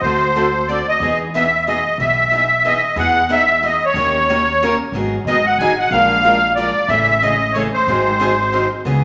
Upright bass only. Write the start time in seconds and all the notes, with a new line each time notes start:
0.01 D2
1.00 E2
1.98 B1
2.96 E2
3.94 D#2
4.92 G#1
5.25 G#1
5.58 A1
5.91 A#1
6.88 A1
7.87 G#1
8.85 C#2